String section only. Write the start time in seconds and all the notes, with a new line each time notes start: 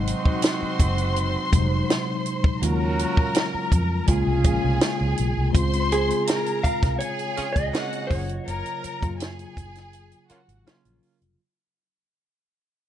Already playing: C5 C6
2.62 A#4 A#5
4.08 G#4 G#5
5.54 C5 C6
6.27 A#4 A#5
7.00 G#4 G#5
7.73 F#4 F#5
8.46 A#4 A#5
9.19 G#4 G#5
10.28 F#4 F#5